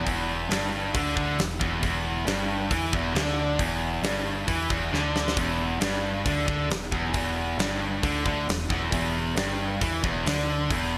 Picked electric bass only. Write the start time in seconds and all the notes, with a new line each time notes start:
0.07 E1
0.49 G1
0.95 D2
1.16 D2
1.39 E1
1.61 E1
1.83 E1
2.26 G1
2.71 E2
2.94 E1
3.15 D2
3.60 E1
4.02 G1
4.49 E2
4.71 E1
4.92 D2
5.37 E1
5.81 G1
6.26 D2
6.48 D2
6.69 E1
6.93 E1
7.14 E1
7.58 G1
8.03 D2
8.26 D2
8.47 E1
8.71 E1
8.93 E1
9.36 G1
9.82 E2
10.05 E1
10.26 D2
10.70 E1